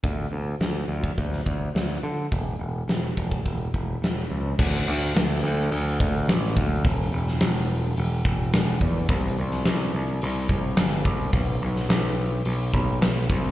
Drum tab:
CC |----------------|----------------|x---------------|----------------|
HH |o---o---o---o---|o---o---o---o---|----o---o---o---|o---o---o---o---|
SD |----o----o--o---|----o-------o---|----o-------o---|---oo-------o---|
BD |o------oo-o-----|o-----ooo-o-----|o---------o---o-|o---------o---o-|

CC |----------------|----------------|
HH |o---o---o---o---|o---o---o---o---|
SD |---oo-------o---|---oo-------o---|
BD |o---------o---o-|o---------o---o-|